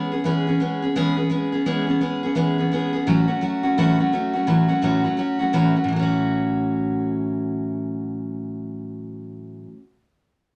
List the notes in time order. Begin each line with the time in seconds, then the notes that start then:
Already playing: G#3 B3 C#4 G#4
0.12 B3 C#4 G#4
0.24 E3 G#3 B3 C#4 G#4
0.47 B3 C#4 G#4
0.60 G#3 B3 C#4 G#4
0.82 B3 C#4 G#4
0.96 E3 G#3 B3 C#4 G#4
1.17 B3 C#4 G#4
1.30 G#3 B3 C#4 G#4
1.52 B3 C#4 G#4
1.66 E3 G#3 B3 C#4 G#4
1.87 B3 C#4 G#4
2.01 G#3 B3 C#4 G#4
2.23 B3 C#4 G#4
2.35 E3 G#3 B3 C#4 G#4
2.58 B3 C#4 G#4
2.72 G#3 B3 C#4 G#4
2.93 B3 C#4 G#4
3.07 A2 E3 F#3 A3 C#4 F#4
3.27 F#3 A3 C#4 F#4
3.41 F#3 A3 C#4 F#4
3.63 F#3 A3 C#4 F#4
3.78 A2 E3 F#3 A3 C#4 F#4
3.99 F#3 A3 C#4 F#4
4.12 F#3 A3 C#4 F#4
4.33 F#3 A3 C#4 F#4
4.47 A2 E3 F#3 A3 C#4 F#4
4.68 F#3 A3 C#4 F#4
4.82 A2 E3 F#3 A3 C#4 F#4
5.04 F#3 A3 C#4 F#4
5.17 F#3 A3 C#4 F#4
5.39 F#3 A3 C#4 F#4
5.53 A2 E3 F#3 A3 C#4 F#4
5.75 F#3 A3 C#4 F#4
5.84 A2
5.88 E3 F#3
5.96 A3 C#4
6.03 F#4